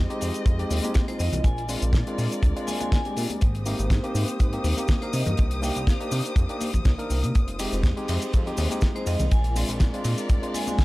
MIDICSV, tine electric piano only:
0, 0, Header, 1, 2, 480
1, 0, Start_track
1, 0, Tempo, 491803
1, 1410, Time_signature, 4, 2, 24, 8
1, 10587, End_track
2, 0, Start_track
2, 0, Title_t, "Tine electric piano"
2, 0, Program_c, 0, 4
2, 91, Note_on_c, 0, 56, 96
2, 95, Note_on_c, 0, 60, 83
2, 98, Note_on_c, 0, 63, 86
2, 100, Note_on_c, 0, 67, 103
2, 544, Note_off_c, 0, 56, 0
2, 546, Note_off_c, 0, 60, 0
2, 548, Note_off_c, 0, 63, 0
2, 549, Note_off_c, 0, 67, 0
2, 570, Note_on_c, 0, 56, 89
2, 573, Note_on_c, 0, 60, 80
2, 578, Note_on_c, 0, 63, 80
2, 581, Note_on_c, 0, 67, 95
2, 789, Note_off_c, 0, 56, 0
2, 790, Note_off_c, 0, 60, 0
2, 793, Note_off_c, 0, 63, 0
2, 794, Note_off_c, 0, 67, 0
2, 811, Note_on_c, 0, 56, 86
2, 817, Note_on_c, 0, 60, 82
2, 819, Note_on_c, 0, 63, 82
2, 821, Note_on_c, 0, 67, 96
2, 1024, Note_off_c, 0, 56, 0
2, 1027, Note_off_c, 0, 60, 0
2, 1028, Note_off_c, 0, 63, 0
2, 1029, Note_off_c, 0, 67, 0
2, 1055, Note_on_c, 0, 56, 76
2, 1055, Note_on_c, 0, 60, 72
2, 1060, Note_on_c, 0, 63, 70
2, 1063, Note_on_c, 0, 68, 87
2, 1395, Note_off_c, 0, 56, 0
2, 1395, Note_off_c, 0, 60, 0
2, 1398, Note_off_c, 0, 63, 0
2, 1399, Note_off_c, 0, 68, 0
2, 1643, Note_on_c, 0, 56, 94
2, 1649, Note_on_c, 0, 60, 88
2, 1650, Note_on_c, 0, 62, 86
2, 1654, Note_on_c, 0, 65, 105
2, 1985, Note_off_c, 0, 56, 0
2, 1988, Note_off_c, 0, 60, 0
2, 1988, Note_off_c, 0, 62, 0
2, 1990, Note_off_c, 0, 65, 0
2, 2015, Note_on_c, 0, 56, 93
2, 2018, Note_on_c, 0, 60, 88
2, 2021, Note_on_c, 0, 62, 85
2, 2026, Note_on_c, 0, 65, 105
2, 2467, Note_off_c, 0, 56, 0
2, 2468, Note_off_c, 0, 60, 0
2, 2469, Note_off_c, 0, 62, 0
2, 2472, Note_off_c, 0, 65, 0
2, 2494, Note_on_c, 0, 56, 92
2, 2498, Note_on_c, 0, 60, 82
2, 2502, Note_on_c, 0, 62, 83
2, 2504, Note_on_c, 0, 65, 102
2, 2711, Note_off_c, 0, 56, 0
2, 2713, Note_off_c, 0, 60, 0
2, 2715, Note_off_c, 0, 62, 0
2, 2716, Note_off_c, 0, 65, 0
2, 2730, Note_on_c, 0, 56, 89
2, 2733, Note_on_c, 0, 60, 80
2, 2737, Note_on_c, 0, 62, 82
2, 2740, Note_on_c, 0, 65, 98
2, 2944, Note_off_c, 0, 56, 0
2, 2946, Note_off_c, 0, 60, 0
2, 2947, Note_off_c, 0, 62, 0
2, 2949, Note_off_c, 0, 65, 0
2, 2975, Note_on_c, 0, 56, 78
2, 2979, Note_on_c, 0, 60, 72
2, 2983, Note_on_c, 0, 62, 72
2, 2985, Note_on_c, 0, 67, 87
2, 3315, Note_off_c, 0, 56, 0
2, 3317, Note_off_c, 0, 60, 0
2, 3319, Note_off_c, 0, 62, 0
2, 3320, Note_off_c, 0, 67, 0
2, 3569, Note_on_c, 0, 58, 97
2, 3571, Note_on_c, 0, 60, 87
2, 3574, Note_on_c, 0, 63, 88
2, 3578, Note_on_c, 0, 67, 102
2, 3908, Note_off_c, 0, 58, 0
2, 3909, Note_off_c, 0, 60, 0
2, 3910, Note_off_c, 0, 63, 0
2, 3912, Note_off_c, 0, 67, 0
2, 3934, Note_on_c, 0, 58, 96
2, 3936, Note_on_c, 0, 60, 88
2, 3942, Note_on_c, 0, 63, 87
2, 3944, Note_on_c, 0, 67, 103
2, 4386, Note_off_c, 0, 58, 0
2, 4387, Note_off_c, 0, 60, 0
2, 4390, Note_off_c, 0, 63, 0
2, 4391, Note_off_c, 0, 67, 0
2, 4418, Note_on_c, 0, 58, 92
2, 4419, Note_on_c, 0, 60, 84
2, 4423, Note_on_c, 0, 63, 83
2, 4426, Note_on_c, 0, 67, 97
2, 4633, Note_off_c, 0, 58, 0
2, 4633, Note_off_c, 0, 60, 0
2, 4636, Note_off_c, 0, 63, 0
2, 4637, Note_off_c, 0, 67, 0
2, 4655, Note_on_c, 0, 58, 88
2, 4659, Note_on_c, 0, 60, 80
2, 4664, Note_on_c, 0, 63, 80
2, 4665, Note_on_c, 0, 67, 99
2, 4866, Note_off_c, 0, 58, 0
2, 4868, Note_off_c, 0, 60, 0
2, 4871, Note_off_c, 0, 63, 0
2, 4872, Note_off_c, 0, 67, 0
2, 4892, Note_on_c, 0, 58, 78
2, 4899, Note_on_c, 0, 62, 69
2, 4905, Note_on_c, 0, 63, 73
2, 4911, Note_on_c, 0, 70, 85
2, 5460, Note_off_c, 0, 58, 0
2, 5464, Note_off_c, 0, 62, 0
2, 5467, Note_off_c, 0, 63, 0
2, 5470, Note_off_c, 0, 70, 0
2, 5485, Note_on_c, 0, 58, 94
2, 5489, Note_on_c, 0, 62, 87
2, 5492, Note_on_c, 0, 63, 84
2, 5496, Note_on_c, 0, 67, 105
2, 5826, Note_off_c, 0, 58, 0
2, 5828, Note_off_c, 0, 62, 0
2, 5829, Note_off_c, 0, 63, 0
2, 5831, Note_off_c, 0, 67, 0
2, 5856, Note_on_c, 0, 58, 93
2, 5858, Note_on_c, 0, 62, 85
2, 5862, Note_on_c, 0, 63, 86
2, 5865, Note_on_c, 0, 67, 103
2, 6307, Note_off_c, 0, 58, 0
2, 6308, Note_off_c, 0, 62, 0
2, 6310, Note_off_c, 0, 63, 0
2, 6311, Note_off_c, 0, 67, 0
2, 6334, Note_on_c, 0, 58, 91
2, 6340, Note_on_c, 0, 62, 83
2, 6342, Note_on_c, 0, 63, 82
2, 6345, Note_on_c, 0, 67, 97
2, 6551, Note_off_c, 0, 58, 0
2, 6554, Note_off_c, 0, 62, 0
2, 6555, Note_off_c, 0, 63, 0
2, 6556, Note_off_c, 0, 67, 0
2, 6813, Note_on_c, 0, 58, 98
2, 6816, Note_on_c, 0, 62, 86
2, 6820, Note_on_c, 0, 63, 89
2, 6821, Note_on_c, 0, 70, 106
2, 7154, Note_off_c, 0, 58, 0
2, 7156, Note_off_c, 0, 62, 0
2, 7157, Note_off_c, 0, 63, 0
2, 7158, Note_off_c, 0, 70, 0
2, 7410, Note_on_c, 0, 56, 94
2, 7414, Note_on_c, 0, 60, 89
2, 7415, Note_on_c, 0, 63, 86
2, 7418, Note_on_c, 0, 67, 104
2, 7748, Note_off_c, 0, 56, 0
2, 7750, Note_off_c, 0, 60, 0
2, 7751, Note_off_c, 0, 63, 0
2, 7752, Note_off_c, 0, 67, 0
2, 7775, Note_on_c, 0, 56, 96
2, 7780, Note_on_c, 0, 60, 85
2, 7782, Note_on_c, 0, 63, 83
2, 7784, Note_on_c, 0, 67, 103
2, 8226, Note_off_c, 0, 56, 0
2, 8229, Note_off_c, 0, 60, 0
2, 8230, Note_off_c, 0, 63, 0
2, 8231, Note_off_c, 0, 67, 0
2, 8257, Note_on_c, 0, 56, 92
2, 8259, Note_on_c, 0, 60, 83
2, 8261, Note_on_c, 0, 63, 83
2, 8265, Note_on_c, 0, 67, 101
2, 8472, Note_off_c, 0, 56, 0
2, 8473, Note_off_c, 0, 60, 0
2, 8474, Note_off_c, 0, 63, 0
2, 8476, Note_off_c, 0, 67, 0
2, 8494, Note_on_c, 0, 56, 89
2, 8498, Note_on_c, 0, 60, 80
2, 8501, Note_on_c, 0, 63, 83
2, 8504, Note_on_c, 0, 67, 96
2, 8706, Note_off_c, 0, 56, 0
2, 8708, Note_off_c, 0, 60, 0
2, 8709, Note_off_c, 0, 63, 0
2, 8711, Note_off_c, 0, 67, 0
2, 8734, Note_on_c, 0, 56, 76
2, 8737, Note_on_c, 0, 60, 72
2, 8739, Note_on_c, 0, 63, 73
2, 8744, Note_on_c, 0, 68, 88
2, 9075, Note_off_c, 0, 56, 0
2, 9076, Note_off_c, 0, 60, 0
2, 9077, Note_off_c, 0, 63, 0
2, 9079, Note_off_c, 0, 68, 0
2, 9324, Note_on_c, 0, 56, 97
2, 9327, Note_on_c, 0, 60, 89
2, 9330, Note_on_c, 0, 62, 86
2, 9335, Note_on_c, 0, 65, 107
2, 9665, Note_off_c, 0, 56, 0
2, 9667, Note_off_c, 0, 60, 0
2, 9668, Note_off_c, 0, 62, 0
2, 9671, Note_off_c, 0, 65, 0
2, 9693, Note_on_c, 0, 56, 94
2, 9696, Note_on_c, 0, 60, 86
2, 9700, Note_on_c, 0, 62, 86
2, 9702, Note_on_c, 0, 65, 103
2, 10146, Note_off_c, 0, 56, 0
2, 10147, Note_off_c, 0, 60, 0
2, 10149, Note_off_c, 0, 62, 0
2, 10150, Note_off_c, 0, 65, 0
2, 10172, Note_on_c, 0, 56, 90
2, 10176, Note_on_c, 0, 60, 81
2, 10178, Note_on_c, 0, 62, 81
2, 10182, Note_on_c, 0, 65, 100
2, 10390, Note_off_c, 0, 56, 0
2, 10392, Note_off_c, 0, 60, 0
2, 10393, Note_off_c, 0, 62, 0
2, 10395, Note_off_c, 0, 65, 0
2, 10413, Note_on_c, 0, 56, 91
2, 10416, Note_on_c, 0, 60, 80
2, 10420, Note_on_c, 0, 62, 84
2, 10423, Note_on_c, 0, 65, 98
2, 10587, Note_off_c, 0, 56, 0
2, 10587, Note_off_c, 0, 60, 0
2, 10587, Note_off_c, 0, 62, 0
2, 10587, Note_off_c, 0, 65, 0
2, 10587, End_track
0, 0, End_of_file